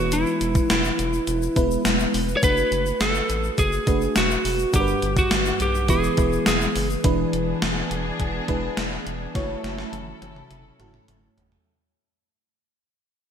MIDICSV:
0, 0, Header, 1, 6, 480
1, 0, Start_track
1, 0, Tempo, 576923
1, 102, Time_signature, 4, 2, 24, 8
1, 11069, End_track
2, 0, Start_track
2, 0, Title_t, "Lead electric guitar"
2, 0, Program_c, 0, 29
2, 0, Note_on_c, 0, 66, 87
2, 109, Note_on_c, 0, 64, 83
2, 113, Note_off_c, 0, 66, 0
2, 580, Note_off_c, 0, 64, 0
2, 590, Note_on_c, 0, 64, 76
2, 1512, Note_off_c, 0, 64, 0
2, 1971, Note_on_c, 0, 73, 77
2, 2025, Note_off_c, 0, 73, 0
2, 2028, Note_on_c, 0, 71, 105
2, 2508, Note_on_c, 0, 69, 90
2, 2519, Note_off_c, 0, 71, 0
2, 2985, Note_off_c, 0, 69, 0
2, 2988, Note_on_c, 0, 68, 90
2, 3471, Note_off_c, 0, 68, 0
2, 3474, Note_on_c, 0, 66, 78
2, 3954, Note_off_c, 0, 66, 0
2, 3957, Note_on_c, 0, 67, 84
2, 4311, Note_off_c, 0, 67, 0
2, 4314, Note_on_c, 0, 66, 84
2, 4671, Note_off_c, 0, 66, 0
2, 4675, Note_on_c, 0, 67, 80
2, 4904, Note_off_c, 0, 67, 0
2, 4908, Note_on_c, 0, 68, 85
2, 5379, Note_off_c, 0, 68, 0
2, 5389, Note_on_c, 0, 68, 73
2, 5720, Note_off_c, 0, 68, 0
2, 11069, End_track
3, 0, Start_track
3, 0, Title_t, "FM electric piano"
3, 0, Program_c, 1, 5
3, 0, Note_on_c, 1, 52, 64
3, 0, Note_on_c, 1, 56, 70
3, 0, Note_on_c, 1, 59, 67
3, 0, Note_on_c, 1, 64, 69
3, 0, Note_on_c, 1, 71, 83
3, 33, Control_c, 1, 64, 127
3, 549, Note_off_c, 1, 52, 0
3, 676, Note_off_c, 1, 56, 0
3, 677, Note_off_c, 1, 59, 0
3, 678, Note_off_c, 1, 64, 0
3, 680, Note_off_c, 1, 71, 0
3, 1296, Note_on_c, 1, 56, 78
3, 1300, Note_on_c, 1, 59, 73
3, 1304, Note_on_c, 1, 64, 78
3, 1308, Note_on_c, 1, 71, 93
3, 1911, Note_off_c, 1, 56, 0
3, 1913, Note_off_c, 1, 59, 0
3, 1915, Note_off_c, 1, 64, 0
3, 1917, Note_off_c, 1, 71, 0
3, 2016, Note_on_c, 1, 57, 70
3, 2019, Note_on_c, 1, 62, 62
3, 2022, Note_on_c, 1, 66, 66
3, 2025, Note_on_c, 1, 71, 80
3, 2033, Control_c, 1, 64, 0
3, 2165, Control_c, 1, 64, 127
3, 2834, Note_off_c, 1, 57, 0
3, 2836, Note_off_c, 1, 62, 0
3, 2838, Note_off_c, 1, 66, 0
3, 2839, Note_off_c, 1, 71, 0
3, 3216, Note_on_c, 1, 57, 70
3, 3219, Note_on_c, 1, 62, 66
3, 3222, Note_on_c, 1, 66, 61
3, 3226, Note_on_c, 1, 71, 74
3, 3831, Note_off_c, 1, 57, 0
3, 3832, Note_off_c, 1, 62, 0
3, 3834, Note_off_c, 1, 66, 0
3, 3836, Note_off_c, 1, 71, 0
3, 3934, Note_on_c, 1, 55, 69
3, 3936, Note_on_c, 1, 62, 63
3, 3938, Note_on_c, 1, 43, 61
3, 3939, Note_on_c, 1, 78, 62
3, 3943, Note_on_c, 1, 70, 64
3, 3950, Control_c, 1, 64, 0
3, 3996, Note_on_c, 1, 71, 75
3, 3997, Note_off_c, 1, 70, 0
3, 4098, Control_c, 1, 64, 127
3, 4626, Note_off_c, 1, 43, 0
3, 4754, Note_off_c, 1, 55, 0
3, 4755, Note_off_c, 1, 62, 0
3, 4756, Note_off_c, 1, 78, 0
3, 4785, Note_off_c, 1, 71, 0
3, 4898, Note_on_c, 1, 56, 73
3, 4901, Note_on_c, 1, 59, 69
3, 4902, Note_on_c, 1, 52, 62
3, 4903, Note_on_c, 1, 64, 65
3, 4907, Note_on_c, 1, 71, 79
3, 4913, Control_c, 1, 64, 0
3, 5057, Control_c, 1, 64, 127
3, 5104, Note_off_c, 1, 56, 0
3, 5105, Note_off_c, 1, 59, 0
3, 5106, Note_off_c, 1, 64, 0
3, 5108, Note_off_c, 1, 71, 0
3, 5136, Note_on_c, 1, 56, 67
3, 5139, Note_on_c, 1, 59, 63
3, 5141, Note_on_c, 1, 64, 62
3, 5146, Note_on_c, 1, 71, 72
3, 5588, Note_off_c, 1, 52, 0
3, 5750, Note_off_c, 1, 56, 0
3, 5752, Note_off_c, 1, 59, 0
3, 5753, Note_off_c, 1, 64, 0
3, 5755, Note_off_c, 1, 71, 0
3, 5854, Note_on_c, 1, 56, 79
3, 5858, Note_on_c, 1, 62, 74
3, 5860, Note_on_c, 1, 52, 69
3, 5861, Note_on_c, 1, 64, 74
3, 5864, Note_on_c, 1, 71, 87
3, 5874, Control_c, 1, 64, 0
3, 5995, Control_c, 1, 64, 127
3, 6548, Note_off_c, 1, 52, 0
3, 6673, Note_off_c, 1, 56, 0
3, 6675, Note_off_c, 1, 62, 0
3, 6677, Note_off_c, 1, 64, 0
3, 6679, Note_off_c, 1, 71, 0
3, 7053, Note_on_c, 1, 56, 74
3, 7057, Note_on_c, 1, 62, 77
3, 7060, Note_on_c, 1, 64, 70
3, 7064, Note_on_c, 1, 71, 91
3, 7669, Note_off_c, 1, 56, 0
3, 7671, Note_off_c, 1, 62, 0
3, 7673, Note_off_c, 1, 64, 0
3, 7675, Note_off_c, 1, 71, 0
3, 7774, Note_on_c, 1, 57, 79
3, 7778, Note_on_c, 1, 64, 74
3, 7783, Note_on_c, 1, 66, 69
3, 7785, Note_on_c, 1, 73, 86
3, 7794, Control_c, 1, 64, 0
3, 7960, Control_c, 1, 64, 127
3, 8594, Note_off_c, 1, 57, 0
3, 8596, Note_off_c, 1, 64, 0
3, 8598, Note_off_c, 1, 66, 0
3, 8599, Note_off_c, 1, 73, 0
3, 8977, Note_on_c, 1, 57, 74
3, 8982, Note_on_c, 1, 64, 65
3, 8984, Note_on_c, 1, 66, 70
3, 8987, Note_on_c, 1, 69, 83
3, 9591, Note_off_c, 1, 57, 0
3, 9594, Note_off_c, 1, 64, 0
3, 9595, Note_off_c, 1, 66, 0
3, 9596, Note_off_c, 1, 69, 0
3, 9713, Control_c, 1, 64, 0
3, 11069, End_track
4, 0, Start_track
4, 0, Title_t, "String section"
4, 0, Program_c, 2, 48
4, 5861, Note_on_c, 2, 52, 77
4, 5862, Note_on_c, 2, 62, 72
4, 5863, Note_on_c, 2, 59, 69
4, 5863, Note_on_c, 2, 68, 84
4, 7762, Note_off_c, 2, 52, 0
4, 7763, Note_off_c, 2, 59, 0
4, 7763, Note_off_c, 2, 62, 0
4, 7763, Note_off_c, 2, 68, 0
4, 7778, Note_on_c, 2, 61, 64
4, 7778, Note_on_c, 2, 69, 78
4, 7781, Note_on_c, 2, 54, 73
4, 7781, Note_on_c, 2, 64, 66
4, 9681, Note_off_c, 2, 61, 0
4, 9681, Note_off_c, 2, 69, 0
4, 9682, Note_off_c, 2, 54, 0
4, 9682, Note_off_c, 2, 64, 0
4, 11069, End_track
5, 0, Start_track
5, 0, Title_t, "Analog synth bass"
5, 0, Program_c, 3, 38
5, 0, Note_on_c, 3, 28, 91
5, 207, Note_off_c, 3, 28, 0
5, 342, Note_on_c, 3, 28, 92
5, 515, Note_off_c, 3, 28, 0
5, 584, Note_on_c, 3, 28, 98
5, 756, Note_off_c, 3, 28, 0
5, 824, Note_on_c, 3, 28, 93
5, 996, Note_off_c, 3, 28, 0
5, 1062, Note_on_c, 3, 28, 109
5, 1235, Note_off_c, 3, 28, 0
5, 1302, Note_on_c, 3, 28, 95
5, 1474, Note_off_c, 3, 28, 0
5, 1542, Note_on_c, 3, 28, 95
5, 1715, Note_off_c, 3, 28, 0
5, 1783, Note_on_c, 3, 28, 85
5, 1955, Note_off_c, 3, 28, 0
5, 2023, Note_on_c, 3, 30, 96
5, 2195, Note_off_c, 3, 30, 0
5, 2259, Note_on_c, 3, 30, 88
5, 2433, Note_off_c, 3, 30, 0
5, 2500, Note_on_c, 3, 30, 99
5, 2673, Note_off_c, 3, 30, 0
5, 2742, Note_on_c, 3, 33, 90
5, 2915, Note_off_c, 3, 33, 0
5, 2981, Note_on_c, 3, 30, 106
5, 3154, Note_off_c, 3, 30, 0
5, 3221, Note_on_c, 3, 30, 95
5, 3394, Note_off_c, 3, 30, 0
5, 3464, Note_on_c, 3, 28, 96
5, 3636, Note_off_c, 3, 28, 0
5, 3701, Note_on_c, 3, 28, 82
5, 3874, Note_off_c, 3, 28, 0
5, 3942, Note_on_c, 3, 31, 103
5, 4115, Note_off_c, 3, 31, 0
5, 4181, Note_on_c, 3, 31, 90
5, 4354, Note_off_c, 3, 31, 0
5, 4421, Note_on_c, 3, 31, 96
5, 4594, Note_off_c, 3, 31, 0
5, 4661, Note_on_c, 3, 35, 87
5, 4898, Note_on_c, 3, 28, 99
5, 4911, Note_off_c, 3, 35, 0
5, 5072, Note_off_c, 3, 28, 0
5, 5142, Note_on_c, 3, 28, 88
5, 5314, Note_off_c, 3, 28, 0
5, 5382, Note_on_c, 3, 28, 90
5, 5555, Note_off_c, 3, 28, 0
5, 5622, Note_on_c, 3, 30, 86
5, 5795, Note_off_c, 3, 30, 0
5, 5861, Note_on_c, 3, 28, 106
5, 6034, Note_off_c, 3, 28, 0
5, 6101, Note_on_c, 3, 28, 90
5, 6274, Note_off_c, 3, 28, 0
5, 6342, Note_on_c, 3, 28, 97
5, 6515, Note_off_c, 3, 28, 0
5, 6578, Note_on_c, 3, 28, 93
5, 6752, Note_off_c, 3, 28, 0
5, 6821, Note_on_c, 3, 28, 102
5, 6994, Note_off_c, 3, 28, 0
5, 7062, Note_on_c, 3, 28, 97
5, 7235, Note_off_c, 3, 28, 0
5, 7300, Note_on_c, 3, 28, 105
5, 7473, Note_off_c, 3, 28, 0
5, 7542, Note_on_c, 3, 28, 94
5, 7714, Note_off_c, 3, 28, 0
5, 7781, Note_on_c, 3, 30, 99
5, 7954, Note_off_c, 3, 30, 0
5, 8019, Note_on_c, 3, 30, 89
5, 8193, Note_off_c, 3, 30, 0
5, 8259, Note_on_c, 3, 30, 92
5, 8433, Note_off_c, 3, 30, 0
5, 8502, Note_on_c, 3, 30, 81
5, 8675, Note_off_c, 3, 30, 0
5, 8741, Note_on_c, 3, 30, 97
5, 8914, Note_off_c, 3, 30, 0
5, 8982, Note_on_c, 3, 30, 89
5, 9154, Note_off_c, 3, 30, 0
5, 9221, Note_on_c, 3, 30, 107
5, 9394, Note_off_c, 3, 30, 0
5, 9465, Note_on_c, 3, 30, 88
5, 9636, Note_off_c, 3, 30, 0
5, 11069, End_track
6, 0, Start_track
6, 0, Title_t, "Drums"
6, 97, Note_on_c, 9, 82, 74
6, 99, Note_on_c, 9, 42, 86
6, 180, Note_off_c, 9, 82, 0
6, 182, Note_off_c, 9, 42, 0
6, 219, Note_on_c, 9, 82, 46
6, 302, Note_off_c, 9, 82, 0
6, 341, Note_on_c, 9, 82, 44
6, 342, Note_on_c, 9, 42, 69
6, 424, Note_off_c, 9, 82, 0
6, 425, Note_off_c, 9, 42, 0
6, 459, Note_on_c, 9, 36, 96
6, 460, Note_on_c, 9, 82, 55
6, 542, Note_off_c, 9, 36, 0
6, 543, Note_off_c, 9, 82, 0
6, 581, Note_on_c, 9, 82, 62
6, 582, Note_on_c, 9, 38, 110
6, 582, Note_on_c, 9, 42, 86
6, 664, Note_off_c, 9, 82, 0
6, 665, Note_off_c, 9, 38, 0
6, 665, Note_off_c, 9, 42, 0
6, 702, Note_on_c, 9, 82, 49
6, 786, Note_off_c, 9, 82, 0
6, 823, Note_on_c, 9, 82, 43
6, 824, Note_on_c, 9, 42, 80
6, 906, Note_off_c, 9, 82, 0
6, 907, Note_off_c, 9, 42, 0
6, 943, Note_on_c, 9, 82, 43
6, 1026, Note_off_c, 9, 82, 0
6, 1060, Note_on_c, 9, 42, 81
6, 1061, Note_on_c, 9, 82, 60
6, 1143, Note_off_c, 9, 42, 0
6, 1144, Note_off_c, 9, 82, 0
6, 1181, Note_on_c, 9, 82, 50
6, 1264, Note_off_c, 9, 82, 0
6, 1300, Note_on_c, 9, 42, 68
6, 1301, Note_on_c, 9, 82, 45
6, 1302, Note_on_c, 9, 36, 85
6, 1384, Note_off_c, 9, 42, 0
6, 1385, Note_off_c, 9, 36, 0
6, 1385, Note_off_c, 9, 82, 0
6, 1424, Note_on_c, 9, 82, 50
6, 1508, Note_off_c, 9, 82, 0
6, 1539, Note_on_c, 9, 38, 116
6, 1540, Note_on_c, 9, 42, 93
6, 1544, Note_on_c, 9, 82, 70
6, 1622, Note_off_c, 9, 38, 0
6, 1623, Note_off_c, 9, 42, 0
6, 1627, Note_off_c, 9, 82, 0
6, 1659, Note_on_c, 9, 82, 49
6, 1742, Note_off_c, 9, 82, 0
6, 1783, Note_on_c, 9, 46, 71
6, 1783, Note_on_c, 9, 82, 46
6, 1866, Note_off_c, 9, 82, 0
6, 1867, Note_off_c, 9, 46, 0
6, 1900, Note_on_c, 9, 82, 49
6, 1984, Note_off_c, 9, 82, 0
6, 2019, Note_on_c, 9, 82, 73
6, 2021, Note_on_c, 9, 36, 114
6, 2021, Note_on_c, 9, 42, 90
6, 2102, Note_off_c, 9, 82, 0
6, 2104, Note_off_c, 9, 36, 0
6, 2105, Note_off_c, 9, 42, 0
6, 2140, Note_on_c, 9, 82, 47
6, 2223, Note_off_c, 9, 82, 0
6, 2260, Note_on_c, 9, 82, 42
6, 2263, Note_on_c, 9, 42, 64
6, 2344, Note_off_c, 9, 82, 0
6, 2346, Note_off_c, 9, 42, 0
6, 2381, Note_on_c, 9, 82, 54
6, 2464, Note_off_c, 9, 82, 0
6, 2500, Note_on_c, 9, 82, 62
6, 2502, Note_on_c, 9, 38, 111
6, 2502, Note_on_c, 9, 42, 87
6, 2583, Note_off_c, 9, 82, 0
6, 2585, Note_off_c, 9, 38, 0
6, 2585, Note_off_c, 9, 42, 0
6, 2619, Note_on_c, 9, 82, 52
6, 2702, Note_off_c, 9, 82, 0
6, 2740, Note_on_c, 9, 82, 45
6, 2743, Note_on_c, 9, 42, 80
6, 2823, Note_off_c, 9, 82, 0
6, 2826, Note_off_c, 9, 42, 0
6, 2860, Note_on_c, 9, 82, 41
6, 2944, Note_off_c, 9, 82, 0
6, 2979, Note_on_c, 9, 42, 78
6, 2980, Note_on_c, 9, 36, 88
6, 2981, Note_on_c, 9, 82, 63
6, 3062, Note_off_c, 9, 42, 0
6, 3063, Note_off_c, 9, 36, 0
6, 3064, Note_off_c, 9, 82, 0
6, 3099, Note_on_c, 9, 82, 48
6, 3182, Note_off_c, 9, 82, 0
6, 3220, Note_on_c, 9, 42, 70
6, 3220, Note_on_c, 9, 82, 47
6, 3221, Note_on_c, 9, 36, 93
6, 3303, Note_off_c, 9, 42, 0
6, 3303, Note_off_c, 9, 82, 0
6, 3304, Note_off_c, 9, 36, 0
6, 3342, Note_on_c, 9, 82, 47
6, 3426, Note_off_c, 9, 82, 0
6, 3458, Note_on_c, 9, 38, 109
6, 3459, Note_on_c, 9, 42, 91
6, 3460, Note_on_c, 9, 82, 70
6, 3541, Note_off_c, 9, 38, 0
6, 3542, Note_off_c, 9, 42, 0
6, 3544, Note_off_c, 9, 82, 0
6, 3582, Note_on_c, 9, 82, 48
6, 3665, Note_off_c, 9, 82, 0
6, 3703, Note_on_c, 9, 46, 70
6, 3704, Note_on_c, 9, 82, 45
6, 3787, Note_off_c, 9, 46, 0
6, 3787, Note_off_c, 9, 82, 0
6, 3820, Note_on_c, 9, 82, 46
6, 3903, Note_off_c, 9, 82, 0
6, 3938, Note_on_c, 9, 82, 76
6, 3941, Note_on_c, 9, 36, 111
6, 3942, Note_on_c, 9, 42, 90
6, 4021, Note_off_c, 9, 82, 0
6, 4024, Note_off_c, 9, 36, 0
6, 4025, Note_off_c, 9, 42, 0
6, 4057, Note_on_c, 9, 82, 46
6, 4140, Note_off_c, 9, 82, 0
6, 4180, Note_on_c, 9, 42, 70
6, 4180, Note_on_c, 9, 82, 41
6, 4263, Note_off_c, 9, 42, 0
6, 4263, Note_off_c, 9, 82, 0
6, 4298, Note_on_c, 9, 36, 102
6, 4300, Note_on_c, 9, 82, 54
6, 4381, Note_off_c, 9, 36, 0
6, 4383, Note_off_c, 9, 82, 0
6, 4418, Note_on_c, 9, 38, 113
6, 4418, Note_on_c, 9, 42, 89
6, 4422, Note_on_c, 9, 82, 65
6, 4501, Note_off_c, 9, 38, 0
6, 4501, Note_off_c, 9, 42, 0
6, 4505, Note_off_c, 9, 82, 0
6, 4540, Note_on_c, 9, 82, 48
6, 4623, Note_off_c, 9, 82, 0
6, 4659, Note_on_c, 9, 42, 76
6, 4659, Note_on_c, 9, 82, 44
6, 4742, Note_off_c, 9, 42, 0
6, 4742, Note_off_c, 9, 82, 0
6, 4783, Note_on_c, 9, 82, 45
6, 4867, Note_off_c, 9, 82, 0
6, 4896, Note_on_c, 9, 42, 78
6, 4899, Note_on_c, 9, 36, 85
6, 4903, Note_on_c, 9, 82, 63
6, 4979, Note_off_c, 9, 42, 0
6, 4982, Note_off_c, 9, 36, 0
6, 4986, Note_off_c, 9, 82, 0
6, 5023, Note_on_c, 9, 82, 47
6, 5106, Note_off_c, 9, 82, 0
6, 5136, Note_on_c, 9, 42, 66
6, 5140, Note_on_c, 9, 36, 90
6, 5144, Note_on_c, 9, 82, 47
6, 5219, Note_off_c, 9, 42, 0
6, 5223, Note_off_c, 9, 36, 0
6, 5227, Note_off_c, 9, 82, 0
6, 5264, Note_on_c, 9, 82, 46
6, 5347, Note_off_c, 9, 82, 0
6, 5375, Note_on_c, 9, 38, 120
6, 5376, Note_on_c, 9, 42, 91
6, 5385, Note_on_c, 9, 82, 74
6, 5459, Note_off_c, 9, 38, 0
6, 5459, Note_off_c, 9, 42, 0
6, 5468, Note_off_c, 9, 82, 0
6, 5502, Note_on_c, 9, 82, 48
6, 5585, Note_off_c, 9, 82, 0
6, 5621, Note_on_c, 9, 46, 63
6, 5624, Note_on_c, 9, 82, 46
6, 5704, Note_off_c, 9, 46, 0
6, 5708, Note_off_c, 9, 82, 0
6, 5744, Note_on_c, 9, 82, 46
6, 5827, Note_off_c, 9, 82, 0
6, 5859, Note_on_c, 9, 42, 90
6, 5861, Note_on_c, 9, 36, 112
6, 5942, Note_off_c, 9, 42, 0
6, 5944, Note_off_c, 9, 36, 0
6, 6101, Note_on_c, 9, 42, 68
6, 6184, Note_off_c, 9, 42, 0
6, 6341, Note_on_c, 9, 38, 105
6, 6341, Note_on_c, 9, 42, 84
6, 6425, Note_off_c, 9, 38, 0
6, 6425, Note_off_c, 9, 42, 0
6, 6582, Note_on_c, 9, 42, 77
6, 6665, Note_off_c, 9, 42, 0
6, 6819, Note_on_c, 9, 42, 74
6, 6820, Note_on_c, 9, 36, 81
6, 6902, Note_off_c, 9, 42, 0
6, 6903, Note_off_c, 9, 36, 0
6, 7058, Note_on_c, 9, 42, 66
6, 7061, Note_on_c, 9, 36, 82
6, 7141, Note_off_c, 9, 42, 0
6, 7145, Note_off_c, 9, 36, 0
6, 7299, Note_on_c, 9, 38, 110
6, 7299, Note_on_c, 9, 42, 88
6, 7382, Note_off_c, 9, 38, 0
6, 7383, Note_off_c, 9, 42, 0
6, 7543, Note_on_c, 9, 42, 67
6, 7626, Note_off_c, 9, 42, 0
6, 7781, Note_on_c, 9, 36, 113
6, 7781, Note_on_c, 9, 38, 49
6, 7782, Note_on_c, 9, 42, 81
6, 7864, Note_off_c, 9, 36, 0
6, 7865, Note_off_c, 9, 38, 0
6, 7865, Note_off_c, 9, 42, 0
6, 8022, Note_on_c, 9, 38, 54
6, 8023, Note_on_c, 9, 42, 66
6, 8106, Note_off_c, 9, 38, 0
6, 8106, Note_off_c, 9, 42, 0
6, 8141, Note_on_c, 9, 38, 51
6, 8224, Note_off_c, 9, 38, 0
6, 8261, Note_on_c, 9, 48, 60
6, 8262, Note_on_c, 9, 42, 81
6, 8345, Note_off_c, 9, 42, 0
6, 8345, Note_off_c, 9, 48, 0
6, 8503, Note_on_c, 9, 48, 68
6, 8504, Note_on_c, 9, 42, 72
6, 8586, Note_off_c, 9, 48, 0
6, 8587, Note_off_c, 9, 42, 0
6, 8623, Note_on_c, 9, 47, 56
6, 8706, Note_off_c, 9, 47, 0
6, 8741, Note_on_c, 9, 42, 69
6, 8743, Note_on_c, 9, 47, 70
6, 8824, Note_off_c, 9, 42, 0
6, 8826, Note_off_c, 9, 47, 0
6, 8983, Note_on_c, 9, 42, 62
6, 8984, Note_on_c, 9, 45, 73
6, 9066, Note_off_c, 9, 42, 0
6, 9067, Note_off_c, 9, 45, 0
6, 9101, Note_on_c, 9, 45, 68
6, 9184, Note_off_c, 9, 45, 0
6, 9221, Note_on_c, 9, 42, 87
6, 9222, Note_on_c, 9, 45, 76
6, 9305, Note_off_c, 9, 42, 0
6, 9305, Note_off_c, 9, 45, 0
6, 9465, Note_on_c, 9, 43, 84
6, 9467, Note_on_c, 9, 42, 62
6, 9548, Note_off_c, 9, 43, 0
6, 9550, Note_off_c, 9, 42, 0
6, 9584, Note_on_c, 9, 43, 73
6, 9667, Note_off_c, 9, 43, 0
6, 11069, End_track
0, 0, End_of_file